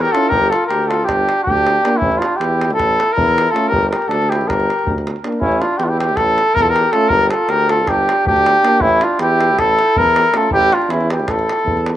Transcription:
0.00 G4 A#4
0.05 davul high
0.11 C#4 E4 F4 A4, davul high
0.23 davul high
0.29 G1 G4 A#4, davul low
0.43 davul high
0.49 F4 A4, davul high
0.66 D2 G4 A#4
0.70 davul high
0.87 F4 A4, davul high
1.00 davul high
1.04 G1 D4 G4
1.09 davul high, davul low
1.29 davul high
1.43 D2 D4 G4
1.47 davul low
1.57 davul high
1.67 davul high
1.76 davul high
1.83 A#3 D4, davul high
1.97 C#4 E4
2.01 A1, davul low
2.12 davul high
2.18 D4 F4
2.22 davul high
2.36 E2 E4 G4
2.41 davul high
2.61 davul high
2.70 A4, davul high
2.76 A1 E4, davul high, davul low
3.00 davul high
3.12 E4 A#4
3.17 E2, davul low
3.28 davul high
3.38 davul high
3.46 davul high
3.51 A3 C#4 F4 A4
3.56 davul high
3.64 A#4, davul high
3.70 G1 G4, davul low
3.83 davul high
3.89 G4 A#4, davul high
4.02 davul high
4.08 D2 D4 A4, davul high
4.22 davul high
4.29 E4 G4, davul high
4.41 davul high
4.47 G1 G4 A#4, davul high, davul low
4.60 davul high
4.70 davul high
4.79 davul high
4.86 D2, davul low
4.98 davul high
5.07 davul high
5.16 davul high
5.24 A#3 D4, davul high
5.32 davul high
5.40 A1 C#4 E4, davul low
5.52 davul high
5.61 D4 F4, davul high
5.78 E2 E4 G4, davul high
5.83 D4 F4
5.88 E4 G4
5.99 E4 G4, davul high
6.09 davul high
6.16 A1 E4 A4, davul high, davul low
6.38 davul high
6.54 E2 E4 A#4, davul low
6.62 F4 A4
6.66 A#4, davul high
6.70 G4
6.76 davul high
6.91 A3 C#4 F4 A4, davul high
7.01 davul high
7.09 G1 G4 A#4, davul low
7.20 davul high
7.29 F4 A4, davul high
7.48 D2 G4 A#4, davul high
7.69 F4 A4, davul high
7.80 davul high
7.87 G1 D4 G4, davul high, davul low
8.09 davul high
8.25 D2 D4 G4, davul low
8.36 davul high
8.46 davul high
8.55 davul high
8.63 A#3 D4, davul high
8.73 davul high
8.80 A1 C#4 E4, davul low
8.91 davul high
9.01 D4 F4, davul high
9.19 E2 E4 G4, davul high
9.41 davul high
9.49 davul high
9.58 A1 E4 A4, davul high, davul low
9.79 davul high
9.96 E2 E4 A#4, davul low
10.06 davul high
10.16 davul high
10.33 A3 C#4 F4 A4, davul high
10.43 davul high
10.50 A1 E4 G4, davul low
10.62 davul high
10.72 D4 F4, davul high
10.82 davul high
10.89 E2 C#4 E4, davul high
11.01 davul high
11.10 E4 G4, davul high
11.19 davul high
11.27 A1 E4 A4, davul high, davul low
11.39 davul high
11.49 davul high
11.59 davul high
11.65 E2, davul low
11.77 davul high
11.86 davul high

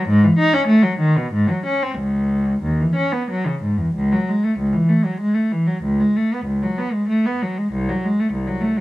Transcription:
0.08 G#2
0.24 E3
0.39 D#4
0.54 C#4
0.68 A3
0.83 F#3
1.00 D#3
1.18 B2
1.34 G#2
1.50 F#3
1.66 C#4
1.83 C4
1.99 C#2
2.63 D#2
2.80 E3
2.95 C#4
3.12 B3
3.30 F#3
3.47 C#3
3.63 G#2
3.77 E2
3.95 C#2
4.12 F#3
4.29 G#3
4.44 A3
4.59 C#2
4.73 E3
4.89 A3
5.04 F#3
5.20 G#3
5.34 A3
5.52 E3
5.67 F#3
5.83 C#2
6.00 G#3
6.16 A3
6.34 B3
6.46 C#2
6.63 F#3
6.78 B3
6.93 G#3
7.09 A3
7.26 B3
7.43 F#3
7.58 G#3
7.73 C2
7.89 F#3
8.05 G#3
8.20 A3
8.33 C2
8.47 F#3
8.61 A3
8.77 F#3

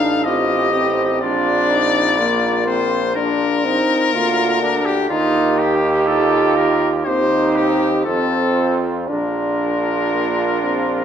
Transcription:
Already playing: A1 D4 D#4 A4 F5
0.24 C4 F4 G4 D#5
0.73 C4
1.21 A#1 D4 F4 D5
1.70 D#4
2.18 A#3 F4
2.66 C4 C5
3.15 D4 A#4
3.64 C4 D#4
4.13 D2 A#3 F4
4.62 D4
4.85 G4
5.09 D#2 A#3 D#4 F4 G4
5.59 G4
6.07 D#4 F4 A4
6.56 A#4
7.05 D#2 C4 D#4 G4 C5
7.56 G4
8.05 F2 C4 F4 A4
9.07 A#1 D4 F4 A#4
10.12 A#3
10.63 C4

